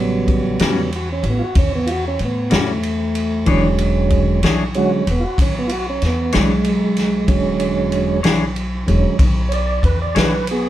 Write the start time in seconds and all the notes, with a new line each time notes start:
Already playing: A1 C#3 F#3 G3 B3
0.28 kick, ride
0.59 E2 A2 C#3 F#3 G3 B3 C#4 F#4, snare, ride
0.92 F#4, ride
1.12 C#4
1.23 A1, ride
1.30 B3
1.39 F4
1.44 F#4
1.55 E2 C#4, kick, ride
1.75 B3
1.87 F4, ride
1.91 F#4
2.08 C#4
2.19 A2, ride
2.25 B3
2.50 E2 A2 G3 C#4 F#4, snare, ride
2.58 A3
2.83 ride
3.15 ride
3.46 E1 D3 E3 D4 G#4 C#5, kick, ride
3.50 F#3 G#3 C#4
3.78 ride
4.10 kick, ride
4.43 B1 E3 D4 G#4 C#5, snare, ride
4.74 D3 F#3 G#3 C#4 F#4, ride
4.94 C#4
5.07 E1 B3, ride
5.20 F4
5.24 F#4
5.38 B1 C#4, kick, ride
5.59 B3
5.67 F4, ride
5.72 F#4
5.90 C#4
6.02 E2, snare, ride
6.06 B3
6.32 B1 E3 G#3 D4 G#4 C#5, snare, ride
6.64 ride
6.97 snare, ride
7.27 E1 D3 F#3 G#3 C#4, kick, ride
7.60 ride
7.92 ride
8.23 B1 E3 D4 G#4 C#5, snare, ride
8.56 ride
8.86 E1 D3 F#3 G#3 C#4, ride
9.19 B1, kick, ride
9.49 C#5, ride
9.54 D5
9.83 E2 B4, kick, ride
10.02 D5
10.15 B1 E3 D4 G#4 B4 C#5, snare, ride
10.47 G#4, ride
10.51 B3